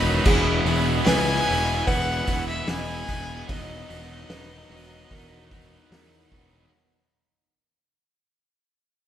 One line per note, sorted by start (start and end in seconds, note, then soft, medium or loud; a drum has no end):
0.00 0.19 E1 loud
0.00 0.24 B2 loud
0.00 0.24 D#3 medium
0.00 0.24 F#3 medium
0.00 0.22 B3 medium
0.00 0.26 B3 medium
0.00 0.26 D#4 loud
0.00 0.23 F#4 medium
0.00 0.26 B4 loud
0.00 6.67 D#5 medium
0.00 0.25 B5 loud
0.25 0.59 E1 loud
0.25 0.65 E3 loud
0.25 0.66 G#3 loud
0.25 0.67 B3 loud
0.25 6.68 B3 medium
0.25 3.46 E4 medium
0.25 0.66 E4 loud
0.25 3.46 G#4 medium
0.25 1.07 G#4 loud
0.25 kick loud
0.25 crash loud
0.65 0.99 E1 loud
0.65 1.05 E3 medium
0.65 1.06 G#3 loud
0.65 1.07 B3 medium
0.65 1.06 E4 loud
0.65 open hi-hat medium
1.04 1.40 C#2 medium
1.04 1.47 E3 loud
1.04 1.48 G#3 loud
1.04 1.49 B3 loud
1.04 1.48 E4 loud
1.04 1.85 B4 loud
1.04 1.89 G#5 loud
1.04 snare loud
1.04 open hi-hat loud
1.27 snare soft
1.47 1.81 E1 loud
1.47 1.86 E3 loud
1.47 1.86 G#3 loud
1.47 1.87 B3 loud
1.47 1.87 E4 loud
1.47 open hi-hat medium
1.87 2.21 E1 loud
1.87 2.27 E3 loud
1.87 2.27 G#3 loud
1.87 2.28 B3 loud
1.87 2.27 E4 loud
1.87 2.68 B4 loud
1.87 2.47 F#5 loud
1.87 kick loud
1.87 open hi-hat medium
2.27 2.61 E1 loud
2.27 2.67 E3 loud
2.27 2.68 G#3 loud
2.27 2.69 B3 medium
2.27 2.68 E4 loud
2.27 kick loud
2.27 open hi-hat medium
2.48 2.70 E5 loud
2.48 snare soft
2.68 3.02 E1 loud
2.68 3.08 E3 loud
2.68 3.08 G#3 loud
2.68 3.09 B3 loud
2.68 3.09 E4 loud
2.68 3.47 D#5 loud
2.68 3.49 G#5 loud
2.68 snare loud
2.68 open hi-hat medium
3.08 3.42 E1 loud
3.08 3.47 E3 medium
3.08 3.47 G#3 loud
3.08 3.50 B3 loud
3.08 3.47 E4 medium
3.08 kick medium
3.08 open hi-hat medium
3.48 3.82 E1 loud
3.48 3.88 B2 loud
3.48 3.89 D#3 loud
3.48 3.89 F#3 medium
3.48 3.90 B3 loud
3.48 3.89 D#4 loud
3.48 6.68 F#4 medium
3.48 4.30 D#5 loud
3.48 6.27 D#5 loud
3.48 6.68 A#5 medium
3.48 kick loud
3.48 open hi-hat medium
3.89 4.23 E1 loud
3.89 4.29 B2 medium
3.89 4.29 D#3 medium
3.89 4.30 F#3 loud
3.89 4.30 B3 loud
3.89 4.30 D#4 loud
3.89 open hi-hat medium
4.30 4.63 E1 medium
4.30 4.69 B2 medium
4.30 4.70 D#3 loud
4.30 4.71 F#3 loud
4.30 4.71 B3 loud
4.30 4.71 D#4 loud
4.30 5.10 B4 medium
4.30 snare loud
4.30 open hi-hat medium
4.70 5.03 E1 medium
4.70 5.11 B2 medium
4.70 5.11 D#3 medium
4.70 5.12 F#3 loud
4.70 5.12 B3 medium
4.70 5.12 D#4 loud
4.70 open hi-hat medium
5.11 5.77 E1 loud
5.11 5.50 B2 loud
5.11 5.51 D#3 loud
5.11 5.51 F#3 loud
5.11 5.51 B3 loud
5.11 5.52 D#4 loud
5.11 5.89 A#4 medium
5.11 kick medium
5.11 open hi-hat loud
5.51 5.90 B2 medium
5.51 5.91 D#3 medium
5.51 5.92 F#3 medium
5.51 5.91 B3 loud
5.51 5.92 D#4 medium
5.51 kick medium
5.51 open hi-hat medium
5.90 6.24 E2 medium
5.90 6.30 B2 loud
5.90 6.31 D#3 loud
5.90 6.31 F#3 loud
5.90 6.31 B3 loud
5.90 6.31 D#4 loud
5.90 6.71 A#4 medium
5.90 snare loud
5.90 open hi-hat loud
6.31 6.64 E1 medium
6.31 6.69 B2 medium
6.31 6.69 D#3 medium
6.31 6.70 F#3 medium
6.31 6.70 B3 loud
6.31 6.70 D#4 medium
6.31 kick medium
6.31 open hi-hat medium